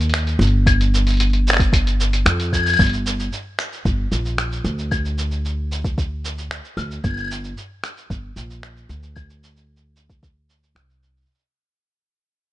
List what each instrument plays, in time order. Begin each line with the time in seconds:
Already playing: upright bass D#2
0.01 closed hi-hat, shaker
0.09 closed hi-hat
0.14 finger snap, closed hi-hat, shaker
0.18 closed hi-hat
0.27 closed hi-hat, shaker
0.39 upright bass G1, shaker
0.47 closed hi-hat
0.66 kick, closed hi-hat, claves, shaker
0.81 closed hi-hat, shaker
0.94 shaker
1.07 closed hi-hat, shaker
1.10 closed hi-hat
1.14 closed hi-hat
1.17 closed hi-hat
1.20 closed hi-hat, shaker
1.27 closed hi-hat
1.30 closed hi-hat
1.33 closed hi-hat
1.47 finger snap, shaker
1.53 finger snap
1.57 finger snap, kick, closed hi-hat
1.61 shaker
1.73 kick, closed hi-hat, shaker
1.87 closed hi-hat, shaker
2.00 shaker
2.13 closed hi-hat, shaker
2.26 upright bass F2, finger snap, closed hi-hat, shaker
2.40 closed hi-hat, shaker
2.53 kick, claves, shaker
2.56 claves
2.60 claves
2.63 closed hi-hat, claves
2.66 closed hi-hat, claves, shaker
2.70 closed hi-hat, claves
2.73 closed hi-hat, claves
2.77 upright bass G1, kick, closed hi-hat, claves
2.80 closed hi-hat, claves, shaker
2.87 closed hi-hat
2.89 closed hi-hat, shaker
3.06 shaker
3.20 shaker
3.33 shaker
3.59 finger snap, shaker
3.73 shaker
3.85 upright bass G1, kick, shaker
4.12 upright bass A#1, shaker
4.25 shaker
4.38 finger snap, shaker
4.52 shaker
4.64 upright bass D2, shaker
4.79 shaker
4.91 kick, claves, shaker
5.05 shaker
5.18 shaker
5.31 shaker
5.45 shaker
5.72 shaker
5.84 kick, shaker
5.98 kick, shaker
6.25 shaker
6.38 shaker
6.51 finger snap, shaker
6.65 shaker
6.77 upright bass D2, claves, shaker
6.91 shaker
7.04 upright bass G1, kick, claves, shaker
7.07 claves
7.10 claves
7.14 claves
7.17 claves, shaker
7.20 claves
7.24 claves
7.27 claves, shaker
7.44 shaker
7.57 shaker
7.84 finger snap, shaker
7.97 shaker
8.10 upright bass G1, kick, shaker
8.36 upright bass A#1, shaker
8.50 shaker
8.63 finger snap, shaker
8.77 shaker
8.89 upright bass D2, shaker
9.03 shaker
9.16 kick, claves, shaker
9.30 shaker
9.43 shaker
9.57 shaker
9.76 shaker
9.96 shaker
10.10 kick, shaker
10.23 kick, shaker
10.50 shaker
10.63 shaker
10.75 upright bass C2, finger snap, shaker
10.90 shaker
11.03 shaker
11.17 shaker
11.21 shaker
11.25 shaker
11.30 shaker
11.34 shaker
11.38 shaker